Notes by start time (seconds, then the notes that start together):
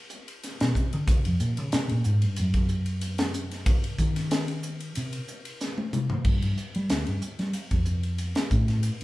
0.10 hi-hat pedal
0.28 ride
0.43 snare, hi-hat pedal, ride
0.60 B2, snare, ride
0.75 C3, kick, hi-hat pedal
0.93 D3, ride
1.08 C#3, kick, hi-hat pedal, ride
1.25 F2, ride
1.40 A#2, hi-hat pedal
1.57 C#3, ride
1.72 C3, snare, hi-hat pedal, ride
1.89 A#2, ride
2.04 G#2, hi-hat pedal
2.22 G2, ride
2.36 F#2, hi-hat pedal, ride
2.54 kick, ride
2.69 hi-hat pedal
2.86 ride
3.01 hi-hat pedal, ride
3.18 snare, ride
3.34 hi-hat pedal
3.51 snare, ride
3.66 kick, hi-hat pedal, ride
3.84 ride
3.98 D#3, kick, hi-hat pedal
4.16 snare, ride
4.31 snare, hi-hat pedal, ride
4.48 ride
4.63 hi-hat pedal
4.80 ride
4.95 C3, hi-hat pedal, ride
5.13 ride
5.28 hi-hat pedal
5.45 ride
5.61 snare, hi-hat pedal
5.78 high tom
5.93 hi-hat pedal, mid tom
6.10 floor tom
6.25 G2, kick, crash
6.42 G2, ride
6.57 hi-hat pedal
6.75 G3, ride
6.90 D2, snare, hi-hat pedal, ride
7.07 G2, ride
7.22 hi-hat pedal
7.39 G3, snare, ride
7.53 hi-hat pedal, ride
7.71 F2, kick, ride
7.85 hi-hat pedal
8.03 ride
8.18 hi-hat pedal, ride
8.35 snare, ride
8.51 A2, kick, hi-hat pedal
8.68 snare, ride
8.83 hi-hat pedal, ride
9.01 ride